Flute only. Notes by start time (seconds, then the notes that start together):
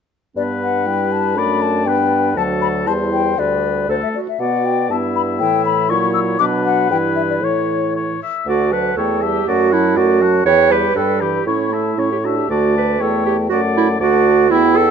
0.37 D5
0.62 F#5
0.87 G5
1.12 A5
1.37 B5
1.62 A5
1.86 G5
2.37 A5
2.62 B5
2.87 A5
3.12 G5
3.39 D5
3.90 C5
4.03 E5
4.15 D5
4.28 E5
4.40 F#5
4.65 G5
4.90 A5
5.16 B5
5.40 G5
5.66 B5
5.89 C#6
6.14 E6
6.39 D6
6.65 F#5
6.91 G5
7.16 E5
7.30 D5
7.42 C#5
8.48 F#5
8.72 A5
8.98 G5
9.23 A5
9.47 F#5
9.73 A5
9.97 F#5
10.22 A5
10.47 G5
10.71 B5
10.98 G5
11.20 B5
11.47 C#6
11.72 A5
11.99 C#6
12.25 A5
12.50 A5
13.01 G5
13.51 F#5
14.00 F#5
14.51 G5